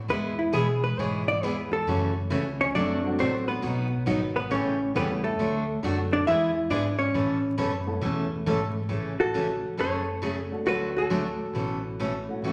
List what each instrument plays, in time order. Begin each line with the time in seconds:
0.08 upright bass E2, steel-string acoustic guitar E3 G#3 B3 E4 G#4, hollow-body jazz guitar B4
0.39 hollow-body jazz guitar E4
0.52 upright bass B2, steel-string acoustic guitar E3 G#3 B3 E4 G#4, hollow-body jazz guitar G#4
0.84 hollow-body jazz guitar B4
0.97 upright bass G#2, steel-string acoustic guitar E3 G#3 B3 E4 G#4, hollow-body jazz guitar C#5
1.27 upright piano E3 G#3 B3 E4 G#4, hollow-body jazz guitar D5
1.43 upright bass E2, steel-string acoustic guitar E3 G#3 B3 E4 G#4, hollow-body jazz guitar B4
1.73 hollow-body jazz guitar A4
1.87 upright bass F#2, steel-string acoustic guitar C#3 E3 A3 C#4 F#4
2.30 upright bass C#2, steel-string acoustic guitar C#3 E3 A3 C#4 F#4
2.61 hollow-body jazz guitar C#4 C#5
2.74 upright bass F#1, steel-string acoustic guitar C3 F#3 A3 D4 F#4, hollow-body jazz guitar D4 D5
3.04 upright piano F#3 A3 C4 D4 F#4
3.19 upright bass A1, steel-string acoustic guitar C3 F#3 A3 D4 F#4, hollow-body jazz guitar C4 C5
3.48 hollow-body jazz guitar B3 B4
3.62 upright bass B1, steel-string acoustic guitar B2 F#3 B3 D#4 F#4
4.06 upright bass G#1, steel-string acoustic guitar B2 F#3 B3 D#4 F#4, upright piano D#3 F#3 B3 D#4 F#4
4.36 hollow-body jazz guitar B3 B4
4.50 upright bass A1, steel-string acoustic guitar C#3 E3 A3 C#4 G4, hollow-body jazz guitar C#4 C#5
4.95 upright bass E2, steel-string acoustic guitar C#3 E3 A3 C#4 G4, upright piano E3 G3 A3 C#4 E4, hollow-body jazz guitar B3 B4
5.24 hollow-body jazz guitar A3 A4
5.39 upright bass D2, steel-string acoustic guitar D3 F#3 A3 D4 F#4
5.83 upright bass F#2, upright piano D3 F#3 A3 D4 F#4, steel-string acoustic guitar D3 F#3 A3 D4 F#4
6.13 hollow-body jazz guitar D4 D5
6.25 upright bass E2, steel-string acoustic guitar E3 G#3 B3 E4 G#4, hollow-body jazz guitar E4 E5
6.70 upright bass G#2, steel-string acoustic guitar E3 G#3 B3 E4 G#4, hollow-body jazz guitar D4 D5
6.99 hollow-body jazz guitar C#4 C#5
7.14 upright bass A2, steel-string acoustic guitar B2 E3 A3 C#4 A4
7.58 upright bass F#2, steel-string acoustic guitar B2 E3 A3 C#4 A4
7.87 upright piano A3 B3 C#4 E4 A4
8.01 upright bass E2, steel-string acoustic guitar B2 E3 A3 C#4 A4
8.46 upright bass G#2, steel-string acoustic guitar B2 E3 A3 C#4 A4
8.89 upright bass A1, steel-string acoustic guitar C#3 E3 A3 C#4 A4
9.20 hollow-body jazz guitar F#4 A4
9.34 steel-string acoustic guitar C#3 E3 A3 C#4 A4
9.77 upright bass F#1, steel-string acoustic guitar C#3 F#3 A3 C#4 G#4, hollow-body jazz guitar A4 C#5
10.22 steel-string acoustic guitar C#3 F#3 A3 C#4 G#4
10.51 upright piano A3 D4 F#4 A4
10.66 upright bass D2, steel-string acoustic guitar D3 F#3 A3 D4 F#4, hollow-body jazz guitar F#4 B4
10.97 hollow-body jazz guitar F#4 A4
11.10 steel-string acoustic guitar D3 F#3 A3 D4 F#4
11.53 upright bass A1, steel-string acoustic guitar B2 E3 A3 C#4 A4
11.99 steel-string acoustic guitar B2 E3 A3 C#4 A4
12.28 upright piano A3 C#4 E4 F#4
12.42 upright bass F#1, steel-string acoustic guitar C#3 E3 A3 C#4 F#4